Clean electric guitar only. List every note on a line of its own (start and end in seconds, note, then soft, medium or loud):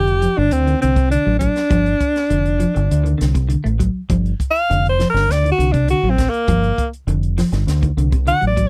0.00 0.12 D3 medium
0.22 0.32 F3 medium
0.37 0.58 D3 medium
0.67 0.76 D#3 medium
0.81 0.91 D3 medium
0.96 1.06 C3 medium
1.10 1.21 D3 medium
1.26 1.36 F#3 medium
1.41 1.62 F#3 medium
1.70 1.91 F3 medium
2.30 2.51 D3 medium
2.60 2.70 F3 medium
2.75 2.96 D3 medium
3.04 3.14 D#3 medium
3.18 3.29 D3 medium
3.35 3.45 C3 medium
3.49 3.59 D3 medium
3.64 3.75 A3 medium
3.79 4.00 F#3 medium
4.10 4.31 F3 medium
4.70 4.91 D3 medium
4.99 5.10 F3 medium
5.14 5.35 D3 medium
5.44 5.54 D#3 medium
5.58 5.69 D3 medium
5.74 5.84 C3 medium
5.89 5.99 D3 medium
6.04 6.15 F#3 medium
6.48 6.69 F3 medium
7.08 7.29 D3 medium
7.38 7.48 F3 medium
7.53 7.74 D3 medium
7.82 7.93 D#3 medium
7.98 8.08 D3 medium
8.12 8.23 C3 medium
8.27 8.37 D3 medium
8.41 8.52 F#3 medium
8.57 8.69 F#3 medium